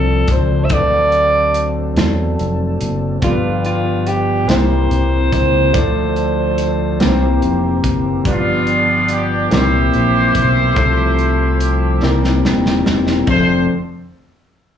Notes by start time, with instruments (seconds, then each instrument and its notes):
Already playing: fingered electric bass C2, tonewheel organ F3 C4 D4 A4, grand piano A3 D4 F4 C5, alto saxophone A4
0.28 fingered electric bass C#2, kick, closed hi-hat
0.32 alto saxophone C5
0.64 alto saxophone E5
0.69 fingered electric bass D2, grand piano D3 A3 D4 F#4 B4, tonewheel organ F#3 C4 D4 A4, alto saxophone D5, kick, closed hi-hat
0.79 grand piano C5
1.12 closed hi-hat
1.54 closed hi-hat
1.97 fingered electric bass E2, snare, closed hi-hat
2.39 fingered electric bass F1, closed hi-hat
2.81 fingered electric bass F#1, closed hi-hat
3.21 fingered electric bass G1, grand piano G2 G3 D4 F4 A4, tonewheel organ F3 B3 D4 G4, alto saxophone F4, kick, closed hi-hat
3.30 grand piano B4
3.65 alto saxophone F4, closed hi-hat
4.07 alto saxophone G4, closed hi-hat
4.48 fingered electric bass C2, grand piano C3 A#3 E4 G4 C5, tonewheel organ D3 A#3 C4 G4, alto saxophone C5, snare, closed hi-hat
4.55 tonewheel organ E3
4.91 fingered electric bass C2, closed hi-hat
5.33 fingered electric bass C#2, kick, closed hi-hat
5.72 fingered electric bass D2, grand piano D3 A3 D4 E4 D5, tonewheel organ E3 A3 D4 A4, kick, closed hi-hat
5.79 tonewheel organ F3, grand piano F4
6.16 closed hi-hat
6.58 closed hi-hat
7.00 fingered electric bass C2, grand piano C3 A#3 E4 G4 B4, tonewheel organ E3 A#3 C4 G4, snare, closed hi-hat
7.07 grand piano C5
7.42 fingered electric bass F1, closed hi-hat
7.84 fingered electric bass F#1, kick, closed hi-hat
8.24 fingered electric bass G1, grand piano G2 G3 D4 F4 B4, tonewheel organ F3 B3 D4 G4, horn section B3 D4 F4, kick, closed hi-hat
8.67 closed hi-hat
9.08 horn section G4, closed hi-hat
9.50 fingered electric bass C2, grand piano A#2 G3 C4 E4 A#4, tonewheel organ E3 A#3 C4 G4, horn section G4 C5, snare, closed hi-hat
9.54 horn section E4
9.93 fingered electric bass A#1, closed hi-hat
10.35 fingered electric bass B1, kick, closed hi-hat
10.74 fingered electric bass C2, grand piano C3 F3 A3 C4 C5, tonewheel organ F3 A3 C4 A4, kick, closed hi-hat
11.19 closed hi-hat
11.60 closed hi-hat
12.01 fingered electric bass C2, grand piano C3 G3 C4 E4 A#4, tonewheel organ E3 A#3 C4 G4, snare
12.24 snare
12.45 fingered electric bass D#1, snare
12.66 snare
12.86 fingered electric bass E1, snare
13.07 snare
13.27 fingered electric bass F1, grand piano F2 F3 C4 D4 A4, tonewheel organ D3 A3 C4 F4, horn section C5, kick, crash